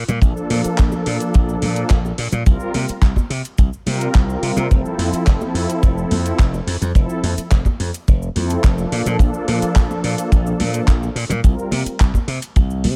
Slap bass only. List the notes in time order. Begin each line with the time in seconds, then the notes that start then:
0.08 A#2
0.22 A#1
0.50 A#2
0.65 muted slap bass stroke
0.79 A#1
1.06 A#2
1.35 A#1
1.62 A#2
1.91 A#1
2.18 A#2
2.32 A#2
2.46 C2
2.74 C3
2.89 muted slap bass stroke
3.02 C2
3.30 C3
3.58 C2
3.87 C3
4.15 C2
4.42 C3
4.56 C3
4.71 F1
4.98 F2
5.12 muted slap bass stroke
5.27 F1
5.54 F2
5.83 F1
6.11 F2
6.39 F1
6.67 F2
6.81 F2
6.95 F1
7.23 F2
7.37 muted slap bass stroke
7.51 F1
7.80 F2
8.08 F1
8.36 F2
8.64 F1
8.92 A#2
9.06 A#2
9.19 A#1
9.48 A#2
9.62 muted slap bass stroke
9.76 A#1
10.04 A#2
10.32 A#1
10.59 A#2
10.88 A#1
11.15 A#2
11.29 A#2
11.44 C2
11.71 C3
11.86 muted slap bass stroke
12.00 C2
12.28 C3
12.56 C2
12.84 C3